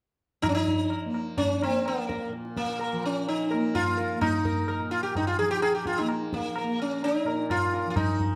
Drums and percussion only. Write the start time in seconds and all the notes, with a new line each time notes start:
0.43 tabla na, tabla ge
0.67 tabla ge
0.90 tabla na
1.14 tabla na
1.37 tabla tin, tabla ge
1.62 tabla na
1.86 tabla na
2.10 tabla ke
2.33 tabla te
2.45 tabla te
2.57 tabla ke
2.69 tabla te
2.81 tabla na
3.04 tabla na
3.28 tabla tin
3.52 tabla na
3.75 tabla na, tabla ge
3.98 tabla te
4.22 tabla na, tabla ge
4.45 tabla ge
4.68 tabla na
4.91 tabla na
5.15 tabla tin, tabla ge
5.39 tabla na
5.62 tabla na
5.86 tabla ke
6.08 tabla na
6.33 tabla ke
6.56 tabla na
6.80 tabla na
7.03 tabla tin
7.26 tabla na
7.50 tabla na, tabla ge
7.74 tabla te
7.96 tabla na, tabla ge
8.20 tabla ge